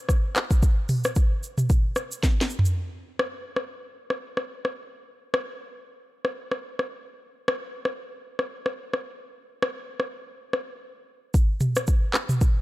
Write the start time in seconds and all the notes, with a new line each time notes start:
0.09 kick, cross-stick, shaker
0.35 cross-stick, clap, shaker
0.51 kick, shaker
0.63 kick, shaker
0.89 mid tom, open hi-hat, shaker
1.04 cross-stick, shaker
1.16 kick, shaker
1.43 shaker
1.58 mid tom, shaker
1.70 kick, shaker
1.96 cross-stick, shaker
2.12 shaker
2.23 kick, snare, shaker
2.41 snare
2.50 shaker
2.59 floor tom
2.65 shaker
3.19 cross-stick
3.56 cross-stick
4.10 cross-stick
4.37 cross-stick
4.65 cross-stick
5.34 cross-stick
6.25 cross-stick
6.52 cross-stick
6.79 cross-stick
7.48 cross-stick
7.85 cross-stick
8.39 cross-stick
8.66 cross-stick
8.94 cross-stick
9.62 cross-stick
10.00 cross-stick
10.53 cross-stick
11.34 kick, shaker
11.60 mid tom, shaker
11.76 cross-stick, shaker
11.87 kick, shaker
12.14 cross-stick, clap, shaker
12.29 mid tom, shaker
12.41 kick, shaker